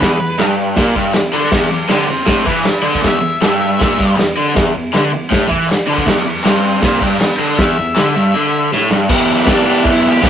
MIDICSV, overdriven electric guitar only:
0, 0, Header, 1, 3, 480
1, 0, Start_track
1, 0, Key_signature, 1, "minor"
1, 0, Tempo, 378549
1, 13, Time_signature, 4, 2, 24, 8
1, 13057, End_track
2, 0, Start_track
2, 0, Title_t, "Overdriven electric guitar"
2, 0, Program_c, 0, 29
2, 13, Note_on_c, 0, 40, 109
2, 237, Note_off_c, 0, 40, 0
2, 252, Note_on_c, 0, 40, 73
2, 444, Note_off_c, 0, 40, 0
2, 483, Note_on_c, 0, 43, 106
2, 960, Note_off_c, 0, 43, 0
2, 964, Note_on_c, 0, 46, 109
2, 1200, Note_off_c, 0, 46, 0
2, 1211, Note_on_c, 0, 43, 111
2, 1443, Note_off_c, 0, 43, 0
2, 1468, Note_on_c, 0, 40, 77
2, 1651, Note_off_c, 0, 40, 0
2, 1685, Note_on_c, 0, 50, 114
2, 1920, Note_off_c, 0, 50, 0
2, 1929, Note_on_c, 0, 40, 109
2, 2152, Note_off_c, 0, 40, 0
2, 2167, Note_on_c, 0, 40, 69
2, 2360, Note_off_c, 0, 40, 0
2, 2393, Note_on_c, 0, 50, 104
2, 2633, Note_on_c, 0, 40, 66
2, 2634, Note_off_c, 0, 50, 0
2, 2833, Note_off_c, 0, 40, 0
2, 2866, Note_on_c, 0, 45, 102
2, 3110, Note_off_c, 0, 45, 0
2, 3116, Note_on_c, 0, 52, 94
2, 3355, Note_off_c, 0, 52, 0
2, 3584, Note_on_c, 0, 50, 109
2, 3820, Note_on_c, 0, 40, 102
2, 3829, Note_off_c, 0, 50, 0
2, 4056, Note_off_c, 0, 40, 0
2, 4071, Note_on_c, 0, 40, 77
2, 4272, Note_off_c, 0, 40, 0
2, 4326, Note_on_c, 0, 43, 107
2, 4800, Note_off_c, 0, 43, 0
2, 4808, Note_on_c, 0, 46, 103
2, 5041, Note_off_c, 0, 46, 0
2, 5054, Note_on_c, 0, 43, 96
2, 5283, Note_off_c, 0, 43, 0
2, 5294, Note_on_c, 0, 40, 80
2, 5483, Note_off_c, 0, 40, 0
2, 5536, Note_on_c, 0, 50, 105
2, 5758, Note_on_c, 0, 40, 112
2, 5764, Note_off_c, 0, 50, 0
2, 5996, Note_off_c, 0, 40, 0
2, 6020, Note_on_c, 0, 40, 75
2, 6206, Note_off_c, 0, 40, 0
2, 6253, Note_on_c, 0, 50, 105
2, 6483, Note_off_c, 0, 50, 0
2, 6490, Note_on_c, 0, 40, 76
2, 6681, Note_off_c, 0, 40, 0
2, 6719, Note_on_c, 0, 45, 113
2, 6950, Note_off_c, 0, 45, 0
2, 6955, Note_on_c, 0, 52, 100
2, 7194, Note_off_c, 0, 52, 0
2, 7447, Note_on_c, 0, 50, 96
2, 7681, Note_off_c, 0, 50, 0
2, 7684, Note_on_c, 0, 40, 102
2, 7905, Note_off_c, 0, 40, 0
2, 7921, Note_on_c, 0, 40, 73
2, 8117, Note_off_c, 0, 40, 0
2, 8175, Note_on_c, 0, 43, 105
2, 8644, Note_on_c, 0, 46, 117
2, 8646, Note_off_c, 0, 43, 0
2, 8880, Note_off_c, 0, 46, 0
2, 8880, Note_on_c, 0, 43, 113
2, 9118, Note_off_c, 0, 43, 0
2, 9128, Note_on_c, 0, 40, 79
2, 9322, Note_off_c, 0, 40, 0
2, 9377, Note_on_c, 0, 50, 97
2, 9607, Note_off_c, 0, 50, 0
2, 9633, Note_on_c, 0, 40, 110
2, 9855, Note_off_c, 0, 40, 0
2, 9877, Note_on_c, 0, 40, 73
2, 10056, Note_off_c, 0, 40, 0
2, 10104, Note_on_c, 0, 50, 107
2, 10331, Note_off_c, 0, 50, 0
2, 10347, Note_on_c, 0, 43, 95
2, 10572, Note_off_c, 0, 43, 0
2, 10583, Note_on_c, 0, 50, 105
2, 11051, Note_off_c, 0, 50, 0
2, 11068, Note_on_c, 0, 45, 114
2, 11290, Note_on_c, 0, 43, 92
2, 11293, Note_off_c, 0, 45, 0
2, 11524, Note_off_c, 0, 43, 0
2, 11527, Note_on_c, 0, 52, 105
2, 11529, Note_on_c, 0, 59, 94
2, 11540, Note_on_c, 0, 64, 99
2, 11555, Note_on_c, 0, 67, 113
2, 11971, Note_off_c, 0, 52, 0
2, 11976, Note_on_c, 0, 52, 93
2, 11994, Note_off_c, 0, 59, 0
2, 11999, Note_on_c, 0, 59, 78
2, 12006, Note_off_c, 0, 64, 0
2, 12006, Note_off_c, 0, 67, 0
2, 12011, Note_on_c, 0, 64, 98
2, 12011, Note_on_c, 0, 67, 98
2, 12211, Note_off_c, 0, 52, 0
2, 12218, Note_off_c, 0, 59, 0
2, 12226, Note_on_c, 0, 52, 76
2, 12232, Note_off_c, 0, 64, 0
2, 12233, Note_on_c, 0, 59, 85
2, 12247, Note_on_c, 0, 64, 95
2, 12251, Note_off_c, 0, 67, 0
2, 12267, Note_on_c, 0, 67, 91
2, 12441, Note_off_c, 0, 52, 0
2, 12454, Note_off_c, 0, 59, 0
2, 12456, Note_on_c, 0, 52, 97
2, 12463, Note_off_c, 0, 64, 0
2, 12469, Note_on_c, 0, 59, 113
2, 12474, Note_off_c, 0, 67, 0
2, 12479, Note_on_c, 0, 64, 108
2, 12489, Note_on_c, 0, 67, 102
2, 12933, Note_off_c, 0, 52, 0
2, 12948, Note_on_c, 0, 52, 89
2, 12950, Note_off_c, 0, 59, 0
2, 12958, Note_off_c, 0, 64, 0
2, 12965, Note_on_c, 0, 59, 107
2, 12971, Note_off_c, 0, 67, 0
2, 12974, Note_on_c, 0, 64, 96
2, 12986, Note_on_c, 0, 67, 106
2, 13057, Note_off_c, 0, 52, 0
2, 13057, Note_off_c, 0, 59, 0
2, 13057, Note_off_c, 0, 64, 0
2, 13057, Note_off_c, 0, 67, 0
2, 13057, End_track
3, 0, Start_track
3, 0, Title_t, "Muted overdriven electric guitar strokes"
3, 3350, Note_on_c, 9, 29, 59
3, 3477, Note_off_c, 9, 29, 0
3, 7185, Note_on_c, 9, 29, 61
3, 7312, Note_off_c, 9, 29, 0
3, 13057, End_track
0, 0, End_of_file